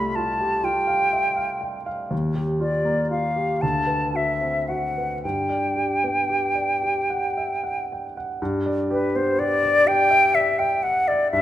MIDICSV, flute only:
0, 0, Header, 1, 2, 480
1, 0, Start_track
1, 0, Key_signature, 1, "major"
1, 0, Tempo, 958466
1, 564, Tempo, 991736
1, 1044, Time_signature, 6, 3, 24, 8
1, 1524, Tempo, 1058201
1, 3924, Tempo, 970874
1, 5416, End_track
2, 0, Start_track
2, 0, Title_t, "Flute"
2, 0, Program_c, 0, 73
2, 0, Note_on_c, 0, 83, 67
2, 78, Note_on_c, 0, 81, 72
2, 85, Note_off_c, 0, 83, 0
2, 322, Note_on_c, 0, 79, 70
2, 330, Note_off_c, 0, 81, 0
2, 803, Note_off_c, 0, 79, 0
2, 1283, Note_on_c, 0, 74, 61
2, 1508, Note_off_c, 0, 74, 0
2, 1523, Note_on_c, 0, 77, 66
2, 1753, Note_on_c, 0, 81, 75
2, 1760, Note_off_c, 0, 77, 0
2, 1999, Note_on_c, 0, 76, 60
2, 2006, Note_off_c, 0, 81, 0
2, 2239, Note_on_c, 0, 78, 58
2, 2246, Note_off_c, 0, 76, 0
2, 2484, Note_off_c, 0, 78, 0
2, 2487, Note_on_c, 0, 79, 63
2, 3672, Note_off_c, 0, 79, 0
2, 4178, Note_on_c, 0, 71, 67
2, 4299, Note_on_c, 0, 72, 69
2, 4307, Note_off_c, 0, 71, 0
2, 4414, Note_on_c, 0, 74, 83
2, 4422, Note_off_c, 0, 72, 0
2, 4652, Note_on_c, 0, 79, 98
2, 4660, Note_off_c, 0, 74, 0
2, 4886, Note_on_c, 0, 76, 81
2, 4893, Note_off_c, 0, 79, 0
2, 5006, Note_on_c, 0, 79, 75
2, 5014, Note_off_c, 0, 76, 0
2, 5124, Note_on_c, 0, 78, 82
2, 5132, Note_off_c, 0, 79, 0
2, 5248, Note_on_c, 0, 74, 78
2, 5255, Note_off_c, 0, 78, 0
2, 5362, Note_off_c, 0, 74, 0
2, 5365, Note_on_c, 0, 76, 87
2, 5416, Note_off_c, 0, 76, 0
2, 5416, End_track
0, 0, End_of_file